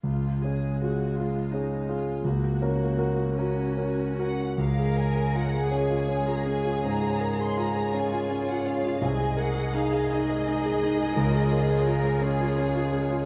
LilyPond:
<<
  \new Staff \with { instrumentName = "Violin section" } { \time 12/8 \key des \major \tempo 4. = 55 r1 r4. ges''8 | f''8 aes''8 ges''8 aes''8. bes''16 aes''8 bes''8. c'''16 bes''8 aes''8. ges''16 f''8 | aes''8 ges''8 f''8 ees''2.~ ees''8 r4 | }
  \new Staff \with { instrumentName = "Violin section" } { \time 12/8 \key des \major << { r1. | des''1. | ees''2. des''2. | } \\ { r1. | aes'1. | aes'1. | } >> }
  \new Staff \with { instrumentName = "Cello section" } { \time 12/8 \key des \major r1. | bes'4. aes'2. f'4. | aes'2. bes'8 aes'8 bes'8 aes'4. | }
  \new Staff \with { instrumentName = "Grand piano" } { \time 12/8 \key des \major des,8 <des' aes'>8 <f' aes'>8 <f' aes'>8 <des' aes'>8 <f' aes'>8 des,8 <des' bes'>8 <ges' bes'>8 <ges' bes'>8 <des' bes'>8 <ges' bes'>8 | des,16 aes'16 bes'16 aes'16 f'16 aes'16 des'16 f'16 des'16 f'16 des'16 f'16 aes,16 aes'16 bes'16 aes'16 f'16 aes'16 des'16 f'16 des'16 f'16 des'16 f'16 | c,16 aes'16 bes'16 aes'16 ees'16 aes'16 ees'16 aes'16 ees'16 aes'16 ees'16 aes'16 des,16 aes'16 bes'16 aes'16 f'16 aes'16 des'16 f'16 des'16 f'16 des'16 f'16 | }
  \new Staff \with { instrumentName = "Viola section" } { \time 12/8 \key des \major << { f'8 aes'8 ges'8 f'8 ees'8 f'8 ges'4. ges'4~ ges'16 r16 | aes'1. | aes'2. f'2. | } \\ { aes2. bes4. des'4~ des'16 r16 | aes1. | aes1. | } >> }
>>